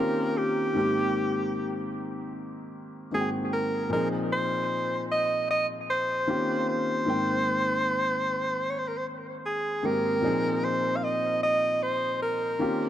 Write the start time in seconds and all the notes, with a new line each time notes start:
Already playing: D#3 A#3 C4 C#4 F4 G4 A#4
0.38 G4
0.74 G#2 D#3 A#3 C4
0.78 G4
3.12 G#2 D#3 A#3 C4 F#4 G#4
3.20 G5
3.53 A#4
3.89 A#2 F3 C4 D#4 A#4
3.94 G#4
4.32 C5
5.11 D#5
5.51 D#5
5.90 C5
6.27 D#3 A#3 C4 C#4 F4 G4
6.69 C5
7.05 G#2 D#3 A#3 C4
7.10 G5
8.70 C#5
8.79 C5
8.88 A#4
8.97 C5
9.46 G#4
9.83 G#2 D#3 A#3 C4 G4 A#4
10.21 A#2 F3 C4 D#4
10.26 G#4
10.64 C5
10.97 F5
11.04 D#5
11.43 D#5
11.83 C5
12.22 A#4
12.59 D#3 A#3 C4 C#4 F4 G4